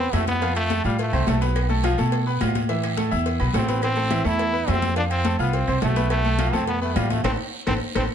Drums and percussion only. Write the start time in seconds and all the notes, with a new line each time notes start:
0.13 cowbell, high conga, low timbale, low agogo, short guiro, claves
0.27 cowbell, high conga, short guiro
0.41 cowbell, high conga, low agogo, long guiro
0.56 cowbell, high conga, low agogo, claves
0.70 cowbell, high conga, low timbale, short guiro
0.84 high conga, low agogo, short guiro
0.99 cowbell, high conga, low agogo, long guiro
1.13 high conga, low agogo, claves
1.27 cowbell, high conga, low timbale, low agogo, short guiro
1.41 cowbell, short guiro
1.56 cowbell, high conga, low agogo, long guiro, claves
1.70 high conga, low agogo
1.84 cowbell, high conga, low timbale, low agogo, short guiro, claves
1.98 high conga, low agogo, short guiro
2.12 cowbell, high conga, low agogo, long guiro
2.27 high conga
2.40 cowbell, high conga, low timbale, low agogo, short guiro, claves
2.55 cowbell, high conga, short guiro
2.69 cowbell, high conga, low agogo, long guiro
2.83 cowbell, high conga, low agogo, claves
2.97 cowbell, high conga, low timbale, short guiro
3.12 high conga, low agogo, short guiro
3.26 cowbell, high conga, low agogo, long guiro
3.40 high conga, low agogo, claves
3.54 cowbell, high conga, low timbale, low agogo, short guiro
3.68 cowbell, short guiro
3.82 cowbell, high conga, low agogo, long guiro, claves
3.96 high conga, low agogo
4.11 cowbell, high conga, low timbale, low agogo, short guiro, claves
4.25 low agogo, short guiro
4.39 cowbell, high conga, low agogo, long guiro
4.54 high conga
4.68 cowbell, high conga, low timbale, low agogo, short guiro, claves
4.82 cowbell, high conga, short guiro
4.96 cowbell, low agogo, long guiro
5.10 cowbell, high conga, low agogo, claves
5.25 cowbell, high conga, low timbale, short guiro
5.39 high conga, low agogo, short guiro
5.53 cowbell, high conga, low agogo, long guiro
5.67 high conga, low agogo, claves
5.82 cowbell, high conga, low timbale, low agogo, short guiro
5.96 cowbell, high conga, short guiro
6.10 cowbell, high conga, low agogo, long guiro, claves
6.25 high conga, low agogo
6.39 cowbell, high conga, low timbale, low agogo, short guiro, claves
6.53 high conga, low agogo, short guiro
6.67 cowbell, high conga, low agogo, long guiro
6.82 high conga
6.96 cowbell, high conga, low timbale, low agogo, short guiro, claves
7.10 cowbell, high conga, short guiro
7.24 cowbell, high conga, high timbale, long guiro, claves
7.67 cowbell, high conga, high timbale, long guiro, claves
7.96 cowbell, high conga, high timbale, long guiro, claves